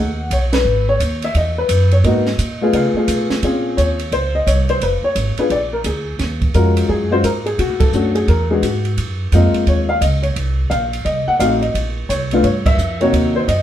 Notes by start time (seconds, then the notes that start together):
Already playing: D#2 F#5
0.30 B1 C#5, kick, hi-hat pedal, ride
0.53 B4, snare, ride
0.65 G#1
0.89 C#5
1.00 D#2, kick, hi-hat pedal, ride
1.22 E5, ride
1.34 E2 D#5, kick, ride
1.58 B4
1.69 F#2, kick, hi-hat pedal, ride
1.91 C#5, ride
2.04 G#2 A#3 B3 D#4 F#4 D#5, kick, ride
2.26 snare
2.38 A#2, kick, hi-hat pedal, ride
2.61 A3 B3 F4 G#4
2.73 C#3 F5, kick, ride
2.94 A3 B3 F4 G#4, muted upright bass stroke
3.07 B2, kick, hi-hat pedal, ride
3.29 muted upright bass stroke, snare, ride
3.42 A#2 C4 C#4 F4 G#4, kick, ride
3.77 D#2 C#5, kick, hi-hat pedal, ride
3.99 ride
4.12 C#2 C5, kick, ride
4.35 D#5
4.46 C2 C#5, kick, hi-hat pedal, ride
4.69 C5, ride
4.81 F1 B4, kick, ride
5.03 C#5, muted upright bass stroke
5.15 G#1, kick, hi-hat pedal, ride
5.37 B3 D4 F4 G#4 B4, muted upright bass stroke, ride
5.50 A#1 D5, kick, ride
5.73 A#4
5.84 D2 G#4, kick, hi-hat pedal, ride
6.19 D#2, kick, snare, ride
6.42 kick, ride
6.54 F2 G#3 C#4 F4 F#4 A#4, kick, hi-hat pedal, ride
6.77 ride
6.89 F#2 G#4, kick
7.10 G#3 C#4 F4 F#4 C5
7.24 G#2 A#4, kick, hi-hat pedal, ride
7.46 G#4, ride
7.58 B2 F#4, kick, ride
7.69 A2
7.80 F#2 A4, kick, ride
7.93 F#2 A3 C#4 D4 F#4, hi-hat pedal
8.15 G#4, ride
8.28 E2 A#4, kick, ride
8.49 G#3 B3 D4 F#4 G#4
8.62 G#2 F#4, kick, hi-hat pedal, ride
8.85 ride
8.97 F#2, kick, ride
9.32 F2 G#3 A#3 C4 F4 D#5, kick, hi-hat pedal, ride
9.53 muted upright bass stroke, ride
9.66 D#2 C#5, kick, ride
9.89 F5
10.01 C#2 D#5, kick, hi-hat pedal, ride
10.22 C#5, ride
10.36 C2, kick, ride
10.70 A#1 F5, kick, hi-hat pedal, ride
10.93 ride
11.05 C2 D#5, kick, ride
11.27 F#5, muted upright bass stroke
11.39 A1 A3 C4 D#4 F#4 F5, kick, hi-hat pedal, ride
11.61 D#5, ride
11.74 A#1, kick, ride
12.09 C2 C#5, kick, hi-hat pedal, ride
12.31 A3 B3 D4 F4, ride
12.43 G2 C#5, kick, ride
12.66 E5, kick, ride
12.77 F2, hi-hat pedal
13.01 C3 A#3 D#4 F#4 C#5, ride
13.13 D#2, kick, ride
13.36 C5
13.48 F#2 D#5, kick, hi-hat pedal, ride